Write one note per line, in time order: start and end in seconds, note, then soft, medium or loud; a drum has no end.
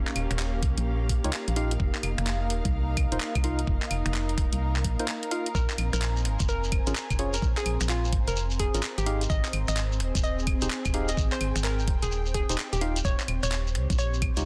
0.00 5.56 A#3 medium
0.00 1.80 C#4 medium
0.00 3.33 G4 medium
0.00 5.56 A#4 medium
0.00 6.95 F5 medium
0.07 clap medium
0.16 0.28 D#1 medium
0.16 open hi-hat loud
0.16 claves medium
0.31 0.64 D#1 medium
0.31 finger snap medium
0.31 closed hi-hat medium
0.39 clap loud
0.63 0.75 C#2 loud
0.63 kick loud
0.63 open hi-hat medium
0.77 1.20 A#1 loud
0.77 closed hi-hat medium
1.09 kick medium
1.09 open hi-hat loud
1.24 1.31 C#2 medium
1.24 1.31 D#4 medium
1.24 1.31 F4 medium
1.24 1.31 G4 medium
1.24 1.31 C#5 medium
1.24 closed hi-hat medium
1.33 clap loud
1.48 1.77 A#1 medium
1.48 closed hi-hat medium
1.56 1.73 D#4 loud
1.56 1.73 F4 medium
1.56 1.73 G4 medium
1.56 1.73 F5 loud
1.56 open hi-hat medium
1.71 closed hi-hat medium
1.80 1.92 F1 loud
1.80 6.92 D#4 medium
1.80 kick loud
1.95 clap medium
2.03 2.15 F1 medium
2.03 10.59 A#4 medium
2.03 open hi-hat loud
2.03 claves medium
2.18 2.52 F1 loud
2.18 finger snap medium
2.18 closed hi-hat medium
2.27 clap loud
2.50 2.62 D#1 loud
2.50 open hi-hat medium
2.65 3.07 C2 loud
2.65 kick loud
2.65 closed hi-hat medium
2.97 kick loud
2.97 open hi-hat loud
2.97 claves medium
3.12 3.19 D#1 medium
3.12 3.18 D#4 medium
3.12 3.18 F4 medium
3.12 3.18 A#4 medium
3.12 3.18 C5 loud
3.12 closed hi-hat medium
3.20 clap loud
3.35 3.65 C2 medium
3.35 kick medium
3.35 closed hi-hat medium
3.35 claves medium
3.44 3.60 D#4 loud
3.44 3.60 F4 medium
3.44 3.60 A#4 medium
3.44 3.60 F5 loud
3.44 open hi-hat medium
3.59 closed hi-hat medium
3.67 3.79 F1 loud
3.67 kick loud
3.82 clap medium
3.91 4.03 F1 medium
3.91 open hi-hat loud
3.91 claves medium
4.06 4.39 F1 loud
4.06 finger snap medium
4.06 closed hi-hat medium
4.14 clap loud
4.29 closed hi-hat soft
4.38 4.50 D#1 loud
4.38 finger snap soft
4.38 kick loud
4.38 open hi-hat loud
4.53 4.84 C2 loud
4.53 closed hi-hat medium
4.76 clap medium
4.84 4.97 A#1 medium
4.84 kick medium
4.84 open hi-hat loud
4.99 5.06 D#4 medium
4.99 5.06 F4 medium
4.99 5.06 A#4 medium
4.99 5.06 C5 loud
4.99 closed hi-hat medium
5.08 clap loud
5.23 closed hi-hat medium
5.31 5.48 D#4 medium
5.31 5.48 F4 medium
5.31 5.48 A#4 medium
5.31 5.48 F5 loud
5.31 open hi-hat medium
5.46 closed hi-hat medium
5.55 5.67 A#1 loud
5.55 13.04 C4 medium
5.55 5.72 A#4 loud
5.55 13.04 C5 medium
5.55 kick loud
5.55 shekere medium
5.70 clap medium
5.70 shekere soft
5.78 5.90 A#1 medium
5.78 open hi-hat loud
5.78 claves medium
5.93 6.27 A#1 loud
5.93 6.05 A#4 loud
5.93 finger snap medium
5.93 closed hi-hat medium
5.93 shekere medium
6.01 9.07 G#5 medium
6.01 clap loud
6.01 shekere medium
6.16 shekere soft
6.25 6.37 G#1 loud
6.25 finger snap soft
6.25 open hi-hat loud
6.39 6.82 F1 loud
6.39 kick loud
6.39 closed hi-hat medium
6.39 shekere medium
6.49 6.66 A#4 loud
6.49 shekere medium
6.64 shekere soft
6.72 kick loud
6.72 open hi-hat loud
6.72 claves medium
6.87 6.94 G#1 medium
6.87 6.93 C#4 medium
6.87 6.93 F4 medium
6.87 6.93 G#4 medium
6.87 6.93 A#4 loud
6.87 closed hi-hat medium
6.87 shekere medium
6.95 clap loud
6.95 shekere medium
7.10 7.40 F1 medium
7.10 kick medium
7.10 closed hi-hat medium
7.10 claves medium
7.10 shekere soft
7.19 7.35 C#4 loud
7.19 7.35 F4 medium
7.19 7.35 G#4 medium
7.19 7.35 C#5 loud
7.19 open hi-hat loud
7.33 7.41 A#4 medium
7.33 closed hi-hat medium
7.33 shekere medium
7.42 7.54 A#1 loud
7.42 kick loud
7.42 shekere medium
7.57 7.69 G#4 medium
7.57 clap medium
7.57 shekere soft
7.66 7.78 A#1 medium
7.66 open hi-hat loud
7.66 claves medium
7.81 8.14 A#1 medium
7.81 finger snap medium
7.81 closed hi-hat medium
7.81 shekere medium
7.89 8.06 F4 loud
7.89 clap loud
7.89 shekere medium
8.04 shekere soft
8.13 8.25 G#1 loud
8.13 kick loud
8.13 open hi-hat medium
8.28 8.70 F1 loud
8.28 8.40 A#4 medium
8.28 closed hi-hat medium
8.28 shekere medium
8.36 shekere medium
8.51 shekere soft
8.60 8.76 G#4 medium
8.60 kick medium
8.60 open hi-hat loud
8.74 8.81 G#1 medium
8.74 8.81 C#4 medium
8.74 8.81 F4 medium
8.74 8.81 G#4 medium
8.74 8.81 A#4 loud
8.74 closed hi-hat medium
8.74 shekere medium
8.82 clap loud
8.82 shekere medium
8.98 9.27 G#1 medium
8.98 9.10 G4 medium
8.98 closed hi-hat medium
8.98 shekere soft
9.06 12.81 C4 medium
9.06 9.23 D#4 loud
9.06 9.23 G4 medium
9.06 9.23 G#4 medium
9.06 9.23 F5 loud
9.06 open hi-hat medium
9.21 closed hi-hat medium
9.21 shekere medium
9.30 9.42 G#1 loud
9.30 9.47 D#5 loud
9.30 kick loud
9.30 shekere medium
9.45 clap medium
9.45 shekere soft
9.53 9.65 G#1 medium
9.53 open hi-hat loud
9.53 claves medium
9.68 10.02 G#1 loud
9.68 9.80 D#5 loud
9.68 finger snap medium
9.68 closed hi-hat medium
9.68 shekere medium
9.77 12.81 G#4 medium
9.77 clap loud
9.77 shekere medium
9.92 shekere soft
10.00 10.12 D#1 loud
10.00 finger snap soft
10.00 open hi-hat medium
10.15 10.57 D#1 loud
10.15 kick loud
10.15 closed hi-hat medium
10.15 shekere medium
10.24 10.40 D#5 medium
10.24 shekere medium
10.31 13.47 G5 medium
10.39 shekere soft
10.47 kick loud
10.47 open hi-hat loud
10.47 claves medium
10.61 10.69 D#1 medium
10.61 10.68 D#4 medium
10.61 10.68 G4 medium
10.61 10.68 G#4 medium
10.61 10.68 C5 loud
10.61 closed hi-hat medium
10.61 shekere medium
10.70 clap loud
10.70 shekere medium
10.85 11.15 D#1 medium
10.85 kick medium
10.85 closed hi-hat medium
10.85 claves medium
10.85 shekere soft
10.94 11.10 D#4 loud
10.94 11.10 G4 medium
10.94 11.10 G#4 medium
10.94 11.10 F5 loud
10.94 open hi-hat medium
11.08 11.16 D#5 medium
11.08 closed hi-hat medium
11.08 shekere medium
11.17 11.29 G#1 loud
11.17 kick loud
11.17 shekere medium
11.32 11.44 C5 medium
11.32 clap medium
11.32 shekere soft
11.41 11.53 G#1 medium
11.41 open hi-hat loud
11.41 claves medium
11.56 11.89 G#1 loud
11.56 finger snap medium
11.56 closed hi-hat medium
11.56 shekere medium
11.64 11.81 A#4 loud
11.64 clap loud
11.64 shekere medium
11.79 shekere soft
11.88 12.00 D#1 loud
11.88 kick loud
11.88 open hi-hat medium
12.02 12.45 D#1 loud
12.02 12.14 G#4 medium
12.02 closed hi-hat medium
12.02 shekere medium
12.11 shekere medium
12.26 shekere soft
12.34 12.51 G#4 medium
12.34 kick medium
12.34 open hi-hat loud
12.49 12.56 D#1 medium
12.49 12.56 D#4 medium
12.49 12.56 G4 medium
12.49 12.56 G#4 medium
12.49 12.56 C5 loud
12.49 closed hi-hat medium
12.49 shekere medium
12.58 clap loud
12.58 shekere medium
12.73 13.02 D#1 medium
12.73 12.85 G4 medium
12.73 closed hi-hat medium
12.73 shekere soft
12.81 12.98 D#4 loud
12.81 12.98 F4 medium
12.81 12.98 G4 medium
12.81 12.98 F5 loud
12.81 open hi-hat medium
12.96 closed hi-hat medium
12.96 shekere medium
13.05 13.17 D#1 medium
13.05 14.45 C4 medium
13.05 14.45 C5 medium
13.05 13.22 C#5 loud
13.05 kick loud
13.05 shekere medium
13.20 clap medium
13.20 shekere soft
13.28 13.40 D#1 medium
13.28 open hi-hat loud
13.28 claves medium
13.43 13.77 D#1 loud
13.43 13.55 C#5 loud
13.43 finger snap medium
13.43 closed hi-hat medium
13.43 shekere medium
13.50 14.45 G4 medium
13.50 clap loud
13.50 shekere medium
13.67 shekere soft
13.75 13.87 C#2 loud
13.75 finger snap soft
13.75 open hi-hat medium
13.90 14.32 A#1 loud
13.90 kick loud
13.90 closed hi-hat medium
13.90 shekere medium
13.98 14.15 C#5 medium
13.98 shekere medium
14.14 shekere soft
14.22 kick loud
14.22 open hi-hat loud
14.22 claves medium
14.37 14.44 C#2 medium
14.37 14.43 D#4 medium
14.37 14.43 F4 medium
14.37 14.43 G4 medium
14.37 14.43 C#5 loud
14.37 closed hi-hat medium
14.37 shekere medium